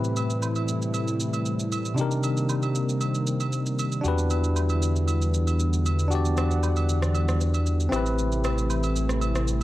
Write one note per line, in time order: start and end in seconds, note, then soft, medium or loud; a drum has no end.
0.00 1.66 A2 medium
0.00 4.01 C3 medium
0.00 1.94 E3 medium
0.00 9.63 G3 medium
0.00 1.95 A3 medium
0.00 1.67 C4 medium
0.00 1.68 E4 medium
0.00 1.95 E4 medium
0.00 1.69 G4 medium
0.00 1.70 B4 medium
0.04 shaker medium
0.16 high agogo medium
0.16 shaker medium
0.30 shaker medium
0.42 low woodblock medium
0.42 shaker medium
0.56 high agogo medium
0.56 shaker soft
0.68 shaker medium
0.82 shaker medium
0.94 high agogo medium
0.94 shaker medium
1.08 shaker medium
1.20 shaker medium
1.33 high agogo medium
1.33 shaker medium
1.46 shaker medium
1.59 shaker medium
1.72 high agogo medium
1.72 shaker medium
1.85 shaker medium
1.94 3.99 C3 medium
1.94 4.03 D#3 medium
1.94 4.03 A#3 medium
1.94 4.03 C4 medium
1.94 4.00 D4 medium
1.94 4.01 D#4 medium
1.94 shaker medium
1.99 4.01 G4 medium
1.99 4.02 A#4 medium
2.11 shaker medium
2.23 high agogo medium
2.23 shaker medium
2.37 shaker medium
2.49 low woodblock medium
2.49 shaker medium
2.63 high agogo medium
2.63 shaker soft
2.75 shaker medium
2.89 shaker medium
3.01 high agogo medium
3.01 shaker medium
3.15 shaker medium
3.27 shaker medium
3.40 high agogo medium
3.40 shaker medium
3.52 shaker medium
3.66 shaker medium
3.79 high agogo medium
3.79 shaker medium
3.92 shaker medium
4.01 7.89 E2 medium
4.01 7.89 D3 medium
4.01 7.88 E3 medium
4.01 7.88 B3 medium
4.01 6.06 D4 medium
4.01 6.09 E4 medium
4.01 6.07 F#4 medium
4.01 shaker medium
4.06 6.08 G4 medium
4.06 6.09 B4 medium
4.18 shaker medium
4.30 high agogo medium
4.30 shaker medium
4.44 shaker medium
4.56 low woodblock medium
4.56 shaker medium
4.69 high agogo medium
4.69 shaker soft
4.82 shaker medium
4.96 shaker soft
5.08 high agogo medium
5.08 shaker medium
5.22 shaker medium
5.34 shaker medium
5.47 high agogo medium
5.47 shaker medium
5.60 shaker medium
5.73 shaker medium
5.86 high agogo medium
5.86 shaker medium
5.99 shaker medium
6.08 7.87 D4 medium
6.08 7.88 F#4 medium
6.08 7.91 F#5 medium
6.08 shaker medium
6.13 7.90 G4 medium
6.13 7.91 D5 medium
6.25 shaker medium
6.37 cross-stick medium
6.37 high agogo medium
6.37 shaker medium
6.51 shaker medium
6.63 low woodblock medium
6.63 shaker medium
6.76 high agogo medium
6.76 shaker soft
6.89 shaker medium
7.02 cross-stick medium
7.02 shaker medium
7.15 high agogo medium
7.15 shaker medium
7.29 cross-stick medium
7.29 shaker medium
7.41 shaker medium
7.54 high agogo medium
7.54 shaker medium
7.66 shaker medium
7.80 shaker medium
7.89 9.63 A1 medium
7.89 9.63 C3 medium
7.89 9.63 E3 medium
7.89 9.63 A3 medium
7.89 9.63 C4 medium
7.89 9.63 E4 medium
7.89 cross-stick medium
7.89 high agogo medium
7.89 shaker medium
7.94 9.63 G4 medium
7.94 9.63 B4 medium
8.06 shaker medium
8.19 shaker medium
8.32 shaker medium
8.44 cross-stick medium
8.44 high agogo medium
8.44 shaker medium
8.58 shaker medium
8.70 low woodblock medium
8.70 shaker medium
8.83 high agogo medium
8.83 shaker soft
8.96 shaker medium
9.09 cross-stick medium
9.09 shaker medium
9.21 high agogo medium
9.21 shaker medium
9.35 cross-stick medium
9.35 shaker medium
9.48 shaker medium